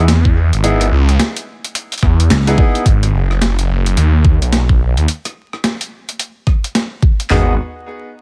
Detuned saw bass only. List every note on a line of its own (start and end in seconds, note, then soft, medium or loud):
0.00 0.50 E2 loud
0.53 0.90 G#1 loud
0.92 1.18 C#2 loud
2.02 2.29 E2 loud
2.86 3.12 G#1 loud
3.14 3.68 F#1 loud
3.69 3.95 F#1 loud
3.97 4.39 D#2 medium
4.42 4.95 B1 loud
4.97 5.06 D#2 loud
7.31 7.56 G#1 medium